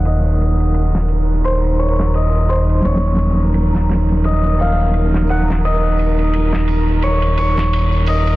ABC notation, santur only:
X:1
M:4/4
L:1/8
Q:"Swing 16ths" 1/4=86
K:Ebdor
V:1 name="Santur"
e4 c d e c | d4 e f2 g | e4 d d2 e |]